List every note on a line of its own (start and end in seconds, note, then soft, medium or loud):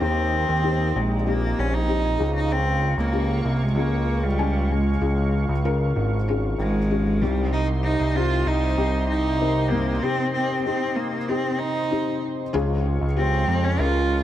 0.00 0.45 D#2 loud
0.00 0.91 D#3 medium
0.00 0.63 C4 medium
0.00 0.98 C4 loud
0.00 0.63 D#4 medium
0.00 2.19 F4 medium
0.00 0.64 G4 medium
0.00 2.16 G4 medium
0.00 2.16 C5 medium
0.00 2.16 D#5 medium
0.00 2.16 A#5 medium
0.49 0.92 D#2 medium
0.63 1.14 C4 medium
0.63 1.14 D#4 medium
0.63 1.14 G4 medium
0.95 1.54 A#1 medium
0.95 1.29 G#3 medium
1.26 1.61 A#3 medium
1.26 1.76 C4 medium
1.26 1.77 D#4 medium
1.26 1.77 G4 medium
1.58 2.17 A#1 medium
1.58 1.75 C#4 medium
1.74 2.35 D#4 medium
1.88 2.20 C4 medium
1.88 2.20 D#4 medium
1.88 2.20 G4 medium
2.18 2.94 C#2 loud
2.18 3.10 C#3 medium
2.18 2.95 G#3 medium
2.18 2.95 F4 medium
2.18 7.17 F4 medium
2.18 2.95 G#4 medium
2.18 7.17 F5 medium
2.18 7.18 C#6 medium
2.36 2.54 D#4 medium
2.52 2.98 C4 medium
2.97 3.42 C#2 loud
2.97 3.65 A#3 medium
3.12 3.64 C#4 medium
3.12 3.64 F4 medium
3.12 3.64 G4 medium
3.45 3.74 C2 medium
3.63 3.79 G#3 medium
3.75 4.97 C#2 loud
3.75 4.27 A#3 medium
3.75 4.26 C#4 medium
3.75 4.27 F4 medium
3.75 4.27 G#4 medium
4.26 4.73 G3 medium
4.38 4.89 C#4 medium
4.38 4.89 F4 medium
4.38 4.90 G#5 medium
4.71 5.61 C#3 medium
4.71 5.65 G#3 medium
5.01 5.45 C#2 loud
5.01 5.52 C#4 medium
5.01 5.52 F4 medium
5.01 5.52 G#4 medium
5.49 5.93 C#2 medium
5.65 6.15 C#4 medium
5.65 6.15 F4 medium
5.65 6.15 A#4 medium
5.96 6.55 G#1 medium
6.28 6.78 C#4 medium
6.28 6.78 F4 medium
6.28 6.78 G#4 medium
6.58 7.23 G#1 medium
6.58 7.23 G#3 medium
6.90 7.22 C#4 medium
6.90 7.22 F4 medium
6.90 7.21 G4 medium
7.21 7.96 C2 medium
7.21 8.12 C3 medium
7.21 7.52 G3 medium
7.21 7.97 C4 medium
7.21 7.97 D#4 medium
7.21 12.50 G4 medium
7.21 7.98 G4 medium
7.21 12.50 C5 medium
7.21 12.50 D#5 medium
7.21 12.50 C6 medium
7.53 7.67 D#4 loud
7.84 8.17 D#4 loud
8.00 8.44 C2 medium
8.15 8.66 C4 medium
8.15 8.66 D#4 medium
8.15 8.48 F4 loud
8.15 8.66 G4 medium
8.46 8.76 C2 medium
8.46 9.09 D#4 loud
8.77 9.99 C2 loud
8.77 9.28 C4 medium
8.77 9.28 D#4 medium
8.77 9.29 G4 medium
9.10 9.72 D#4 loud
9.41 9.91 C4 medium
9.41 9.91 D#4 medium
9.41 9.92 A#4 medium
9.71 10.62 C3 medium
9.71 10.04 A#3 medium
10.02 10.33 C4 loud
10.02 10.54 C4 medium
10.02 10.54 D#4 medium
10.02 10.54 G4 medium
10.33 10.63 C4 medium
10.65 10.97 C4 medium
10.65 11.17 C4 medium
10.65 11.17 D#4 medium
10.65 11.17 G4 medium
10.95 11.30 A#3 medium
11.28 11.60 C4 medium
11.28 11.79 C4 medium
11.28 11.79 D#4 medium
11.28 11.79 G4 medium
11.59 12.22 D#4 medium
11.91 12.41 C4 medium
11.91 12.42 D#4 medium
11.91 12.42 G4 medium
12.53 12.98 C#2 medium
12.53 13.43 C#3 medium
12.53 14.23 G#3 medium
12.53 13.04 C#4 loud
12.53 13.04 F4 loud
12.53 13.04 G#4 loud
12.53 14.23 F5 medium
12.53 14.23 C#6 medium
13.01 13.45 C#2 medium
13.16 13.67 G#3 medium
13.16 13.65 C4 loud
13.16 13.67 F4 medium
13.16 13.67 G4 medium
13.48 13.77 F2 medium
13.64 13.81 C#4 medium
13.79 14.23 C#2 loud
13.79 14.23 C#4 medium
13.79 14.23 F4 medium
13.79 14.23 F4 loud
13.79 14.23 A#4 medium